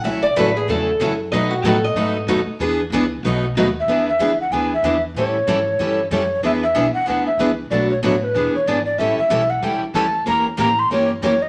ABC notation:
X:1
M:4/4
L:1/8
Q:"Swing" 1/4=188
K:Emix
V:1 name="Recorder"
z8 | z8 | z6 ^d e- | e e2 f g e2 z |
c6 c2 | e e2 f f e2 z | d c c B2 c d d | e e2 f =g z a2 |
^a z a =c' ^c z c ^d |]
V:2 name="Steel-string acoustic guitar"
e d B G A2 z2 | ^d F A d4- d | z8 | z8 |
z8 | z8 | z8 | z8 |
z8 |]
V:3 name="Steel-string acoustic guitar"
[F,CEA] z [F,CEA] z [F,CEA] z [F,CEA] z | [B,,F,A,^DFB] z [B,,F,A,DFB] z [B,,F,A,DFB] z [B,,F,A,DFB] z | [E,B,DGB] z [E,B,DGB] z [B,,F,A,^DFB] z [B,,F,A,DFB] z | [E,B,DGB] z [E,B,DGB] z [E,B,DGB] z [E,B,DGB] z |
[E,=G,CEA] z [E,G,CEA] z [E,G,CEA] z [E,G,CEA] z | [E,B,DGB] z [E,B,DGB] z [E,B,DGB] z [E,B,DGB] z | [B,,F,A,DFB] z [B,,F,A,DFB] z [E,B,DGB] z [E,B,DGB] z | [E,=G,CEA] z [E,G,CEA] z [E,G,CEA] z [E,G,CEA] z |
[E,^A,C=G^A] z [E,A,CGA] z [E,A,CGA] z [E,A,CGA] z |]
V:4 name="Steel-string acoustic guitar"
[C,E,A,CF] z [C,E,A,CF] z [C,E,A,CF] z [C,E,A,CF] z | [B,,F,A,^DF] z [B,,F,A,DF] z [B,,F,A,DF] z [B,,F,A,DF] z | [E,B,DG] z [E,B,DG] z [B,,F,A,^DF] z [B,,F,A,DF] z | [E,B,DG] z [E,B,DG] z [E,B,DG] z [E,B,DG] z |
[E,=G,CEA] z [E,G,CEA] z [E,G,CEA] z [E,G,CEA] z | [E,B,DG] z [E,B,DG] z [E,B,DG] z [E,B,DG] z | [B,,F,A,DF] z [B,,F,A,DF] z [E,B,DG] z [E,B,DG] z | [E,=G,CEA] z [E,G,CEA] z [E,G,CEA] z [E,G,CEA] z |
[E,^A,C=G^A] z [E,A,CGA] z [E,A,CGA] z [E,A,CGA] z |]
V:5 name="Upright bass" clef=bass
C,,2 A,,,2 E,,2 F,,2 | B,,2 A,,2 G,,2 F,, z | E,,2 C,,2 B,,,2 ^D,,2 | E,,2 C,,2 D,,2 E,,2 |
A,,2 G,,2 =G,,2 F,,2 | E,,2 B,,, z D,,2 C,,2 | B,,,2 A,,,2 E,,, z G,,,2 | A,,, z B,,,2 C,, z D,,2 |
E,,2 A,,2 =G,,2 F,,2 |]